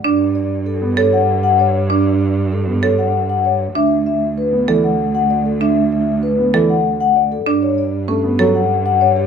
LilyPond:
<<
  \new Staff \with { instrumentName = "Vibraphone" } { \time 6/4 \key g \lydian \tempo 4 = 194 d''8 r8 d''8 r8 a'8 r8 cis''8 fis''8 r8 fis''8 cis''8 r8 | d''8 r8 d''8 r8 a'8 r8 cis''8 fis''8 r8 fis''8 cis''8 r8 | e''8 r8 e''8 r8 b'8 r8 d''8 fis''8 r8 fis''8 d''8 a'8 | e''8 r8 e''8 r8 b'8 r8 d''8 fis''8 r8 fis''8 d''8 a'8 |
d''8 cis''8 d''8 r8 a'8 r8 cis''8 fis''8 r8 fis''8 cis''8 g'8 | }
  \new Staff \with { instrumentName = "Marimba" } { \time 6/4 \key g \lydian d'8 r2 r8 a'8 r2 r8 | d'8 r2 r8 a'8 r2 r8 | d'8 r2 r8 a'8 r2 r8 | d'8 r2 r8 a'8 r2 r8 |
d'8 r4. cis'8 r8 a'8 r2 r8 | }
  \new Staff \with { instrumentName = "Grand piano" } { \time 6/4 \key g \lydian r2 r8 b8 r2. | r2 r8 b8 r2. | r2 r8 b8 e8 r2 r8 | r2 r8 b8 e8 r2 r8 |
r2 a8 b8 fis8 r2 r8 | }
  \new Staff \with { instrumentName = "Cello" } { \clef bass \time 6/4 \key g \lydian g,1.~ | g,1. | d,1.~ | d,1. |
g,1. | }
>>